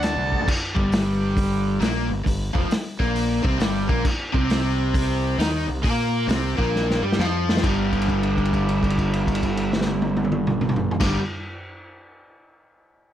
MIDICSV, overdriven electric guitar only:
0, 0, Header, 1, 3, 480
1, 0, Start_track
1, 0, Key_signature, -2, "minor"
1, 0, Tempo, 448096
1, 502, Time_signature, 4, 2, 24, 8
1, 14067, End_track
2, 0, Start_track
2, 0, Title_t, "Overdriven electric guitar"
2, 0, Program_c, 0, 29
2, 0, Note_on_c, 0, 50, 97
2, 0, Note_on_c, 0, 57, 87
2, 0, Note_on_c, 0, 62, 99
2, 489, Note_off_c, 0, 50, 0
2, 495, Note_off_c, 0, 57, 0
2, 499, Note_off_c, 0, 62, 0
2, 806, Note_on_c, 0, 43, 108
2, 812, Note_on_c, 0, 55, 107
2, 1925, Note_on_c, 0, 46, 110
2, 1930, Note_off_c, 0, 43, 0
2, 1933, Note_off_c, 0, 55, 0
2, 1938, Note_on_c, 0, 58, 110
2, 2236, Note_off_c, 0, 46, 0
2, 2238, Note_on_c, 0, 43, 74
2, 2242, Note_off_c, 0, 58, 0
2, 2378, Note_off_c, 0, 43, 0
2, 2401, Note_on_c, 0, 43, 79
2, 2660, Note_off_c, 0, 43, 0
2, 2712, Note_on_c, 0, 41, 97
2, 2718, Note_on_c, 0, 53, 96
2, 2883, Note_off_c, 0, 41, 0
2, 2886, Note_off_c, 0, 53, 0
2, 3206, Note_on_c, 0, 46, 91
2, 3207, Note_on_c, 0, 58, 103
2, 3663, Note_off_c, 0, 46, 0
2, 3668, Note_on_c, 0, 48, 87
2, 3675, Note_off_c, 0, 58, 0
2, 3679, Note_on_c, 0, 60, 106
2, 3832, Note_on_c, 0, 43, 109
2, 3836, Note_on_c, 0, 55, 96
2, 3839, Note_off_c, 0, 48, 0
2, 3845, Note_off_c, 0, 60, 0
2, 4147, Note_off_c, 0, 43, 0
2, 4149, Note_off_c, 0, 55, 0
2, 4149, Note_on_c, 0, 46, 95
2, 4155, Note_on_c, 0, 58, 100
2, 4319, Note_off_c, 0, 46, 0
2, 4322, Note_off_c, 0, 58, 0
2, 4633, Note_on_c, 0, 48, 94
2, 4645, Note_on_c, 0, 60, 117
2, 5760, Note_off_c, 0, 48, 0
2, 5766, Note_off_c, 0, 60, 0
2, 5776, Note_on_c, 0, 51, 86
2, 5780, Note_on_c, 0, 63, 118
2, 6063, Note_off_c, 0, 51, 0
2, 6068, Note_on_c, 0, 48, 72
2, 6080, Note_off_c, 0, 63, 0
2, 6209, Note_off_c, 0, 48, 0
2, 6249, Note_on_c, 0, 58, 121
2, 6252, Note_on_c, 0, 70, 114
2, 6719, Note_on_c, 0, 48, 86
2, 6725, Note_off_c, 0, 58, 0
2, 6726, Note_off_c, 0, 70, 0
2, 6730, Note_on_c, 0, 60, 91
2, 7029, Note_off_c, 0, 48, 0
2, 7034, Note_off_c, 0, 60, 0
2, 7037, Note_on_c, 0, 46, 101
2, 7044, Note_on_c, 0, 58, 101
2, 7511, Note_off_c, 0, 46, 0
2, 7515, Note_off_c, 0, 58, 0
2, 7532, Note_on_c, 0, 55, 93
2, 7540, Note_on_c, 0, 67, 97
2, 7690, Note_off_c, 0, 55, 0
2, 7694, Note_off_c, 0, 67, 0
2, 7709, Note_on_c, 0, 53, 105
2, 7717, Note_on_c, 0, 65, 112
2, 8170, Note_on_c, 0, 43, 86
2, 8175, Note_off_c, 0, 53, 0
2, 8179, Note_off_c, 0, 65, 0
2, 8194, Note_on_c, 0, 50, 115
2, 8208, Note_on_c, 0, 55, 114
2, 11778, Note_off_c, 0, 43, 0
2, 11783, Note_on_c, 0, 43, 91
2, 11808, Note_off_c, 0, 50, 0
2, 11812, Note_on_c, 0, 50, 106
2, 11828, Note_off_c, 0, 55, 0
2, 11832, Note_on_c, 0, 55, 95
2, 11965, Note_off_c, 0, 43, 0
2, 11979, Note_off_c, 0, 50, 0
2, 11989, Note_off_c, 0, 55, 0
2, 14067, End_track
3, 0, Start_track
3, 0, Title_t, "Muted overdriven electric guitar strokes"
3, 2892, Note_on_c, 9, 29, 60
3, 2999, Note_off_c, 9, 29, 0
3, 14067, End_track
0, 0, End_of_file